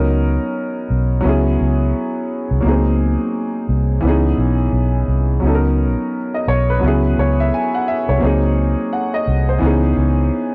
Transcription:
Already playing: C#2 F#3 B3 C#4 D#4 A#4
0.90 B1
1.21 F#3 B3
1.25 C#2 C#4 E4 G#4
1.61 C#2
2.51 C2
2.60 F#3 A#3 B3
2.65 C#2 D#4 G#4
2.71 C4
3.69 C2
4.01 C#2 E3 B3
4.05 C#4 D#4 G#4
4.38 B1
4.73 B1
5.08 C2
5.40 C#2 F#3 B3 C#4
5.46 D#4 A4
5.54 A#4
6.34 D#5
6.48 B1 C#5
6.70 B4
6.79 C#2 F#3 B3
6.84 C#4 E4 G#4
7.18 C#2 C#5
7.40 E5
7.54 G#5
7.75 F#5
7.88 E5
8.09 C2 C#5
8.18 F#3 A#3 C4
8.23 C#2 D#4 G#4
8.93 F#5
9.14 D#5
9.28 C2
9.49 C5
9.59 C#2 E3 B3
9.63 C#4 D#4
9.67 G#4
9.97 C#2

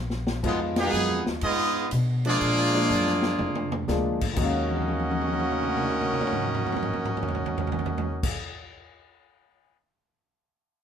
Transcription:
Already playing: A#1
0.10 snare
0.27 snare
0.43 F2 G#2 B2 F3 G#3 B3 D#4 F4, kick, crash
0.76 B2 D#3 G#3 B3 D#4 G#4, snare, ride
0.93 F#2, hi-hat pedal
1.09 F2
1.26 D#2, snare
1.41 G#2 G#3 B3 D#4 F4 G#4 D#5, ride
1.91 B2, hi-hat pedal, ride
2.25 F3 G#3 A#3 D4 F4 G#4 D5, ride
2.41 A#2, ride
2.74 F3 G#3 A#3 D4 F4
2.90 F#2, hi-hat pedal
3.07 snare
3.22 snare
3.39 F2, mid tom
3.55 mid tom
3.72 mid tom
3.88 D2 F3 G#3 A#3 D4 G#4, snare, hi-hat pedal
4.21 kick, crash
4.31 D#2 D#3
4.36 D#2 D#3 F#3 G#3 A#3 C#4 F#4 A#4 D#5, kick, crash
4.41 C#4 F5
4.70 high tom
4.76 high tom
4.82 high tom
4.88 high tom
4.99 high tom
5.11 high tom
5.21 high tom
5.27 high tom
5.32 high tom
5.40 high tom
5.51 mid tom
5.63 mid tom
5.71 mid tom
5.76 mid tom
5.82 mid tom
5.90 mid tom
6.02 mid tom
6.13 mid tom
6.21 mid tom
6.27 mid tom
6.33 mid tom
6.42 mid tom
6.55 mid tom
6.66 mid tom
6.72 mid tom
6.76 mid tom
6.82 mid tom
6.93 mid tom
7.05 mid tom
7.17 mid tom
7.22 floor tom
7.28 floor tom
7.35 floor tom
7.46 floor tom
7.58 floor tom
7.67 floor tom
7.72 floor tom
7.79 floor tom
7.86 floor tom
7.98 floor tom
8.23 kick, crash

